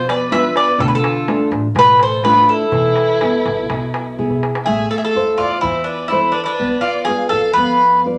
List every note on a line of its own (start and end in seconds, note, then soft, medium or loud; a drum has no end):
0.00 0.50 F2 medium
0.00 0.30 B2 medium
0.09 0.30 B4 medium
0.09 0.31 D5 medium
0.09 darbuka tek medium
0.31 0.70 B3 medium
0.31 0.70 D4 soft
0.31 0.70 F4 medium
0.31 0.53 B4 medium
0.31 0.54 E5 loud
0.31 darbuka tek medium
0.56 0.78 B4 medium
0.56 0.78 D5 medium
0.56 darbuka tek medium
0.78 0.96 D2 loud
0.78 1.26 D3 medium
0.78 0.86 F4 medium
0.78 0.86 A4 medium
0.78 darbuka dum loud
0.88 0.93 G#4 medium
0.88 0.94 B4 medium
0.95 1.49 F4 medium
0.95 1.49 A4 medium
1.04 darbuka tek medium
1.27 1.66 A3 medium
1.27 1.67 D4 soft
1.27 1.67 F4 medium
1.27 darbuka tek medium
1.40 darbuka tek soft
1.51 1.68 A1 loud
1.51 darbuka tek medium
1.75 2.43 A1 medium
1.75 2.23 A3 medium
1.75 1.99 F4 medium
1.75 2.00 B4 loud
1.75 darbuka tek medium
1.75 darbuka dum medium
1.99 2.23 A4 medium
1.99 2.24 C5 medium
1.99 darbuka tek medium
2.24 2.63 A3 medium
2.24 2.63 D4 soft
2.24 2.64 F4 medium
2.24 2.47 F4 medium
2.24 2.49 B4 medium
2.24 darbuka tek medium
2.49 4.40 E4 medium
2.49 4.38 A4 medium
2.72 2.90 E2 medium
2.72 3.19 E3 medium
2.72 darbuka dum medium
2.84 darbuka tek soft
2.96 darbuka tek medium
3.09 darbuka tek soft
3.21 3.60 B3 soft
3.21 3.60 E4 soft
3.21 3.61 B4 medium
3.21 darbuka tek medium
3.33 darbuka tek soft
3.45 3.62 B1 medium
3.45 darbuka tek medium
3.70 4.37 B1 medium
3.70 4.17 B2 medium
3.70 darbuka tek medium
3.70 darbuka dum medium
3.82 darbuka tek soft
3.94 darbuka tek medium
4.18 4.57 B3 soft
4.18 4.57 E4 soft
4.18 4.57 G#4 medium
4.18 darbuka dum soft
4.30 darbuka dum medium
4.43 darbuka tek medium
4.55 darbuka tek medium
4.65 4.83 A1 medium
4.65 5.14 A3 medium
4.65 4.90 G#4 medium
4.65 4.88 E5 medium
4.91 4.97 A4 medium
4.91 4.97 F5 medium
4.98 5.04 G#4 medium
4.98 5.04 E5 medium
5.05 5.40 A4 medium
5.05 5.37 F5 medium
5.15 5.54 E4 soft
5.15 5.54 A4 soft
5.15 5.54 C5 medium
5.38 5.56 E2 medium
5.38 5.61 F4 medium
5.38 5.62 D5 medium
5.61 6.31 E2 loud
5.61 6.10 E3 medium
5.61 5.84 E4 medium
5.61 5.86 C5 medium
5.84 6.11 D4 medium
5.84 6.09 B4 medium
6.08 6.32 E4 medium
6.08 6.50 E4 soft
6.08 6.50 A4 soft
6.08 6.33 C5 medium
6.12 6.51 C5 medium
6.32 6.40 D4 medium
6.32 6.41 B4 medium
6.44 6.80 D4 medium
6.44 6.50 E4 medium
6.44 6.81 B4 medium
6.44 6.47 C5 medium
6.59 6.77 B1 medium
6.59 7.07 B3 medium
6.81 7.08 F4 medium
6.81 7.04 D5 medium
7.05 7.47 F4 soft
7.05 7.29 G#4 medium
7.05 7.47 B4 soft
7.05 7.28 F5 medium
7.09 7.47 D5 medium
7.29 7.49 F2 medium
7.29 7.53 A4 medium
7.29 7.53 F5 medium
7.53 8.18 F2 loud
7.53 8.04 B3 medium
7.53 8.00 B4 loud
7.53 8.01 F5 medium
8.05 8.18 F4 soft
8.05 8.18 B4 soft
8.05 8.18 D5 soft